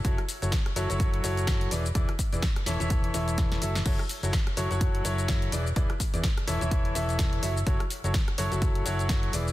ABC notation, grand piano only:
X:1
M:4/4
L:1/16
Q:"Swing 16ths" 1/4=126
K:F#m
V:1 name="Grand piano"
[F,EFAc] z2 [F,EFAc] z2 [F,EFAc] [F,EFAc]3 [F,EFAc]4 [E,EGBd] z | [E,EGBd] z2 [E,EGBd] z2 [E,EAce] [E,EAce]3 [E,EAce]4 [F,EAce] z | [F,EFAc] z2 [F,EFAc] z2 [F,EFAc] [F,EFAc]3 [F,EFAc]4 [E,EGBd] z | [E,EGBd] z2 [E,EGBd] z2 [E,EAce] [E,EAce]3 [E,EAce]4 [F,EAce] z |
[F,EFAc] z2 [F,EFAc] z2 [F,EFAc] [F,EFAc]3 [F,EFAc]4 [E,EGBd] z |]